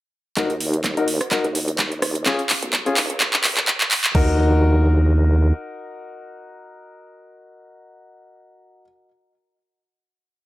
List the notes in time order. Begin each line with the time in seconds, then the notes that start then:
0.37 D#2 D#4 F#4 A#4, kick, clap, closed hi-hat
0.50 D#2, closed hi-hat
0.60 open hi-hat
0.74 closed hi-hat
0.84 kick, clap, closed hi-hat
0.97 D#2 D#4 F#4 A#4, closed hi-hat
1.08 open hi-hat
1.21 cross-stick, closed hi-hat
1.31 D#4 F#4 A#4, kick, clap, closed hi-hat
1.44 D#2, closed hi-hat
1.55 open hi-hat
1.68 closed hi-hat
1.79 D#2, kick, clap, closed hi-hat
1.92 closed hi-hat
2.02 D#2, cross-stick, open hi-hat
2.15 closed hi-hat
2.26 C#2 C#4 F4 G#4, kick, clap, closed hi-hat
2.39 closed hi-hat
2.50 clap, open hi-hat
2.63 B1, closed hi-hat
2.73 kick, clap, closed hi-hat
2.86 C#4 F4 G#4, closed hi-hat
2.97 D#2, clap, open hi-hat
3.10 C#2, closed hi-hat
3.20 kick, clap, closed hi-hat
3.33 C#2, clap, closed hi-hat
3.44 clap, open hi-hat
3.57 clap, closed hi-hat
3.68 C#2, kick, clap, closed hi-hat
3.81 clap, closed hi-hat
3.91 clap, open hi-hat
4.04 clap, closed hi-hat
4.15 D#2 D#4 F#4 A#4, kick, crash